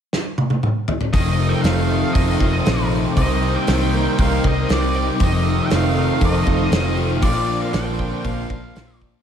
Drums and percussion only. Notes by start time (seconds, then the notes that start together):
0.13 snare
0.38 high tom
0.50 high tom
0.63 mid tom
0.88 floor tom
1.01 floor tom
1.14 kick, open hi-hat
1.64 snare, open hi-hat
2.15 kick, open hi-hat
2.40 kick
2.66 snare, open hi-hat
3.16 kick, open hi-hat
3.67 snare, open hi-hat
4.19 kick, open hi-hat
4.44 kick
4.70 snare, open hi-hat
5.20 kick, open hi-hat
5.71 snare, open hi-hat
6.21 kick, open hi-hat
6.47 kick
6.72 snare, open hi-hat
7.22 kick, open hi-hat
7.73 snare, open hi-hat
7.99 kick
8.25 kick, open hi-hat
8.50 kick
8.76 snare, open hi-hat
9.02 kick